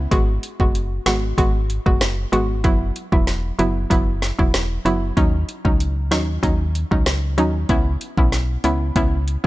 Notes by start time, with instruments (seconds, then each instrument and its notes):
0.11 fm bass G#1, synth pluck G#3 B3 F#4, kick, closed hi-hat
0.43 closed hi-hat
0.60 fm bass F#1, synth pluck G#3 B3 F#4, kick
0.75 closed hi-hat
1.06 fm bass G#1, synth pluck G#3 B3 F#4, snare, closed hi-hat
1.38 fm bass G#1, synth pluck G#3 B3 F#4, kick, closed hi-hat
1.70 closed hi-hat
1.86 fm bass F#1, synth pluck G#3 B3 F#4, kick
2.01 cross-stick, snare, closed hi-hat
2.32 fm bass G#1, synth pluck G#3 B3 F#4, closed hi-hat
2.64 fm bass F#1, synth pluck F#3 B3 E4, kick, closed hi-hat
2.96 closed hi-hat
3.12 fm bass E1, synth pluck F#3 B3 E4, kick
3.27 snare, closed hi-hat
3.59 fm bass F#1, synth pluck F#3 B3 E4, closed hi-hat
3.90 fm bass F#1, synth pluck F#3 B3 E4, kick, closed hi-hat
4.22 snare, closed hi-hat
4.39 fm bass E1, synth pluck F#3 B3 E4, kick
4.54 cross-stick, snare, closed hi-hat
4.85 fm bass F#1, synth pluck F#3 B3 E4, closed hi-hat
5.17 fm bass D#2, synth pluck F#3 C#4 D#4, kick, closed hi-hat
5.49 closed hi-hat
5.65 fm bass C#2, synth pluck F#3 C#4 D#4, kick
5.80 closed hi-hat
6.11 fm bass D#2, synth pluck F#3 C#4 D#4, snare, closed hi-hat
6.43 fm bass D#2, synth pluck F#3 C#4 D#4, kick, closed hi-hat
6.75 closed hi-hat
6.91 fm bass C#2, synth pluck F#3 C#4 D#4, kick
7.06 cross-stick, snare, closed hi-hat
7.38 fm bass D#2, synth pluck F#3 C#4 D#4, closed hi-hat
7.69 fm bass C#2, synth pluck B3 C#4 E4, kick, closed hi-hat
8.01 closed hi-hat
8.17 fm bass B1, synth pluck B3 C#4 E4, kick
8.32 snare, closed hi-hat
8.64 fm bass C#2, synth pluck B3 C#4 E4, closed hi-hat
8.96 fm bass C#2, synth pluck B3 C#4 E4, kick, closed hi-hat
9.28 closed hi-hat